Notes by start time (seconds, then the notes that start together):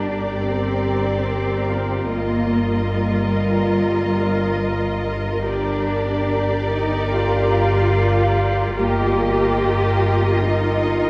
Already playing: G1 D4 G4 A#4 D5
0.45 C4
1.69 F4 F5
2.11 G1 A#3 F4 A#4 D#5
2.96 G3
4.20 A#4
5.45 G1 D4 G4 A#4 D5
6.70 D#4
7.11 F4
8.78 G1 A#3 F4 G4 A#4 D#5
10.46 D#4